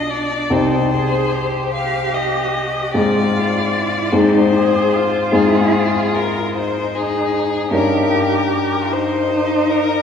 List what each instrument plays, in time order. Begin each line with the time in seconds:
Already playing: grand piano B1 G3 F4 G4, cello D4, violin D#5
0.10 violin D5
0.50 grand piano C2 C4 D#4 G4, cello D#4, violin C5
0.94 cello G#4
1.34 cello G4
1.74 violin F5
2.14 violin D#5
2.94 grand piano G#2 C4 D#4 G#4, cello F4, violin D5
4.13 grand piano G#2 C4 D#4 G#4, cello D#4, violin C5
4.56 cello G#4
4.94 cello F4
5.32 grand piano G#2 C4 D#4 G#4, violin G#4
6.14 violin A#4
6.54 cello D#4, violin C5
6.95 violin G#4
7.71 grand piano G2 C#4 D#4 A#4, cello G4, violin A#4
8.91 cello D#4, violin C5
9.70 violin A#4